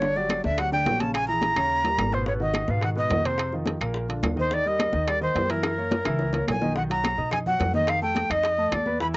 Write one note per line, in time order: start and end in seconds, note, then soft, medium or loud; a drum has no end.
0.00 0.39 G1 medium
0.00 0.14 D3 medium
0.00 0.14 D4 medium
0.00 0.18 C#5 medium
0.00 0.14 D5 medium
0.00 high bongo medium
0.00 high conga soft
0.16 0.40 F#3 medium
0.16 0.40 F#4 medium
0.16 0.40 G4 medium
0.16 0.44 D5 medium
0.16 high bongo soft
0.16 high conga soft
0.29 high bongo medium
0.29 high conga medium
0.29 high timbale medium
0.29 low timbale medium
0.29 claves medium
0.44 0.83 D2 medium
0.44 0.56 D3 medium
0.44 0.56 D4 medium
0.44 0.56 D5 medium
0.44 0.61 E5 medium
0.44 high bongo soft
0.44 high conga medium
0.58 0.70 F#3 medium
0.58 0.70 F#4 medium
0.58 0.70 G4 medium
0.58 0.72 F#5 loud
0.58 high bongo medium
0.58 high conga soft
0.58 high timbale medium
0.58 claves medium
0.72 0.84 D3 medium
0.72 0.84 D4 medium
0.72 0.84 D5 medium
0.72 1.02 G5 loud
0.72 high bongo soft
0.72 high conga soft
0.86 1.51 A#1 medium
0.86 0.98 F#3 medium
0.86 0.98 F#4 medium
0.86 0.98 G4 medium
0.86 high bongo soft
0.86 low bongo medium
0.86 high conga medium
0.86 high timbale medium
0.86 low timbale medium
1.00 1.24 C#3 medium
1.00 1.24 C#4 medium
1.00 1.24 C#5 medium
1.00 1.14 A5 medium
1.00 high conga medium
1.00 high timbale medium
1.14 1.27 G#5 loud
1.14 high bongo medium
1.14 high timbale medium
1.14 claves medium
1.28 1.51 E3 medium
1.28 1.51 E4 medium
1.28 1.51 G#4 medium
1.28 2.15 A#5 loud
1.28 high bongo soft
1.28 high conga soft
1.41 high bongo medium
1.41 high conga medium
1.41 high timbale medium
1.41 low timbale medium
1.56 1.95 D#2 medium
1.56 1.80 C#3 medium
1.56 1.80 C#4 medium
1.56 1.80 C#5 medium
1.56 high bongo medium
1.56 high conga soft
1.56 high timbale medium
1.56 claves medium
1.70 high conga soft
1.84 2.07 G3 medium
1.84 2.08 G4 medium
1.84 2.08 A#4 medium
1.84 low bongo medium
1.84 high conga soft
1.84 high timbale medium
1.98 2.63 G#1 medium
1.98 high conga medium
1.98 high timbale medium
1.98 low timbale medium
1.98 claves medium
2.12 2.24 B2 medium
2.12 2.24 B3 medium
2.12 2.24 B4 medium
2.12 2.27 C5 medium
2.12 low bongo medium
2.12 high conga medium
2.26 2.38 B2 medium
2.26 2.38 B3 medium
2.26 2.38 B4 medium
2.26 2.33 C#5 medium
2.26 high bongo medium
2.26 high conga soft
2.40 2.63 D#3 medium
2.40 2.63 D#4 medium
2.40 2.64 F#4 medium
2.40 2.72 D#5 medium
2.40 high bongo soft
2.40 high conga soft
2.53 high bongo medium
2.53 high conga medium
2.53 high timbale medium
2.53 low timbale medium
2.53 claves medium
2.67 3.08 G#2 medium
2.67 2.80 B2 medium
2.67 2.80 B3 medium
2.67 2.80 B4 medium
2.67 2.83 F5 medium
2.67 high bongo soft
2.67 high conga medium
2.81 2.94 D#3 medium
2.81 2.94 D#4 medium
2.81 2.94 F#4 medium
2.81 2.90 F#5 medium
2.81 high bongo medium
2.81 high conga soft
2.81 high timbale medium
2.81 claves medium
2.95 3.08 B2 medium
2.95 3.08 B3 medium
2.95 3.08 B4 medium
2.95 3.27 D#5 medium
2.95 high bongo soft
2.95 high conga soft
3.10 3.75 F2 medium
3.10 3.23 D#3 medium
3.10 3.23 D#4 medium
3.10 3.23 F#4 medium
3.10 high bongo soft
3.10 low bongo medium
3.10 high conga medium
3.10 high timbale medium
3.10 low timbale medium
3.25 3.48 C3 medium
3.25 3.48 C4 medium
3.25 3.48 C5 medium
3.25 3.53 C5 medium
3.25 high timbale medium
3.38 high bongo medium
3.38 high conga soft
3.38 high timbale medium
3.38 claves medium
3.52 3.76 D#3 medium
3.52 3.76 D#4 medium
3.52 3.77 F4 medium
3.52 high bongo soft
3.52 high conga soft
3.66 high bongo medium
3.66 high conga medium
3.66 high timbale medium
3.66 low timbale medium
3.80 4.20 A#1 medium
3.80 4.04 A#2 medium
3.80 4.04 A#3 medium
3.80 4.04 A#4 medium
3.80 high bongo soft
3.80 high conga soft
3.80 high timbale medium
3.80 claves medium
3.94 high bongo medium
3.94 high conga soft
4.08 4.32 D3 medium
4.08 4.32 D4 medium
4.08 4.33 F4 medium
4.08 high bongo soft
4.08 high conga soft
4.08 high timbale medium
4.23 4.88 D#2 medium
4.23 high bongo soft
4.23 low bongo medium
4.23 high conga medium
4.23 high timbale medium
4.23 low timbale medium
4.23 claves medium
4.36 4.48 D#3 medium
4.36 4.48 D#4 medium
4.36 4.55 C5 medium
4.36 4.49 D#5 medium
4.36 high conga medium
4.51 4.63 D#3 medium
4.51 4.63 D#4 medium
4.51 4.69 D5 loud
4.51 4.63 D#5 medium
4.51 high bongo medium
4.51 high conga soft
4.65 4.89 G3 medium
4.65 4.89 G4 medium
4.65 4.89 A#4 medium
4.65 5.10 D#5 loud
4.65 high bongo soft
4.65 high conga soft
4.79 high bongo medium
4.79 high conga medium
4.79 high timbale loud
4.79 low timbale medium
4.79 claves medium
4.93 5.33 D#2 medium
4.93 5.05 D#3 medium
4.93 5.05 D#4 medium
4.93 5.06 D#5 medium
4.93 high bongo soft
4.93 high conga medium
5.08 5.19 G3 medium
5.08 5.19 G4 medium
5.08 5.20 A#4 medium
5.08 5.22 D5 loud
5.08 high bongo medium
5.08 high conga soft
5.08 high timbale medium
5.08 claves medium
5.21 5.33 D#3 medium
5.21 5.33 D#4 medium
5.21 5.52 C5 medium
5.21 5.33 D#5 medium
5.21 high bongo soft
5.21 high conga soft
5.35 6.00 F#2 medium
5.35 5.47 G3 medium
5.35 5.47 G4 medium
5.35 5.47 A#4 medium
5.35 high bongo soft
5.35 low bongo medium
5.35 high conga medium
5.35 high timbale medium
5.35 low timbale medium
5.49 5.72 E3 medium
5.49 5.73 E4 medium
5.49 6.49 A#4 medium
5.49 5.73 E5 medium
5.49 high timbale medium
5.63 high bongo loud
5.63 high conga soft
5.63 high timbale medium
5.63 claves medium
5.78 6.01 A#3 medium
5.78 6.01 A#4 medium
5.78 6.01 C#5 medium
5.78 high conga soft
5.91 low bongo loud
5.91 high conga medium
5.91 high timbale medium
5.91 low timbale medium
6.05 6.45 C#2 medium
6.05 6.29 E3 medium
6.05 6.29 E4 medium
6.05 6.29 E5 medium
6.05 high bongo medium
6.05 high conga soft
6.05 high timbale medium
6.05 claves medium
6.19 low bongo medium
6.19 high conga soft
6.33 6.57 A#3 medium
6.33 6.57 A#4 medium
6.33 6.58 C#5 medium
6.33 low bongo medium
6.33 high conga soft
6.33 high timbale medium
6.48 7.13 B1 medium
6.48 6.75 G#5 medium
6.48 high conga medium
6.48 high timbale medium
6.48 low timbale medium
6.48 claves medium
6.62 6.73 D#3 medium
6.62 6.74 D#4 medium
6.62 6.74 D#5 medium
6.62 low bongo medium
6.62 high conga medium
6.75 6.87 D#3 medium
6.75 6.88 D#4 medium
6.75 6.88 D#5 medium
6.75 6.83 F#5 medium
6.75 high bongo medium
6.75 high conga soft
6.90 7.13 F#3 medium
6.90 7.13 F#4 medium
6.90 7.14 F#5 medium
6.90 7.30 A#5 medium
6.90 high bongo soft
6.90 high conga soft
6.90 high timbale medium
7.04 high bongo medium
7.04 high conga loud
7.04 high timbale loud
7.04 claves medium
7.18 7.57 B2 medium
7.18 7.41 D#4 medium
7.18 7.41 D#5 medium
7.18 7.41 D#6 medium
7.18 high bongo soft
7.18 high conga soft
7.31 7.39 G#5 loud
7.31 high bongo medium
7.31 high conga soft
7.31 low conga medium
7.31 high timbale medium
7.31 claves medium
7.46 7.69 F#3 medium
7.46 7.70 F#4 medium
7.46 7.73 F#5 medium
7.46 7.70 F#5 medium
7.46 high conga soft
7.46 low conga medium
7.60 8.25 F2 medium
7.60 high bongo soft
7.60 low bongo medium
7.60 high conga soft
7.60 high timbale medium
7.60 low timbale medium
7.73 7.97 D#3 medium
7.73 7.98 D#4 medium
7.73 7.91 D#5 medium
7.73 7.98 D#5 medium
7.73 high bongo soft
7.73 high conga medium
7.87 8.02 F5 loud
7.87 high bongo medium
7.87 high timbale medium
7.87 claves medium
8.01 8.25 A3 medium
8.01 8.25 A4 medium
8.01 8.33 G5 medium
8.01 8.26 A5 medium
8.01 high bongo soft
8.01 high conga soft
8.15 high bongo medium
8.15 high conga medium
8.15 high timbale medium
8.30 8.69 F2 medium
8.30 8.53 D#4 medium
8.30 8.53 D#5 medium
8.30 8.75 D#5 loud
8.30 8.54 D#6 medium
8.30 high bongo soft
8.30 high timbale medium
8.30 claves medium
8.44 high bongo medium
8.44 high conga soft
8.44 high timbale medium
8.58 8.81 A3 medium
8.58 8.81 A4 medium
8.58 8.82 A5 medium
8.58 high conga soft
8.72 9.17 E2 medium
8.72 9.00 D5 medium
8.72 high bongo soft
8.72 low bongo medium
8.72 high conga medium
8.72 high timbale loud
8.72 claves medium
8.86 8.98 B3 medium
8.86 8.98 B4 medium
8.86 8.98 B5 medium
8.86 high bongo soft
8.86 high conga medium
9.00 9.12 E3 medium
9.00 9.12 E4 medium
9.00 9.12 E5 medium
9.00 9.07 B5 loud
9.00 high bongo medium
9.00 high conga soft
9.14 9.17 G#3 medium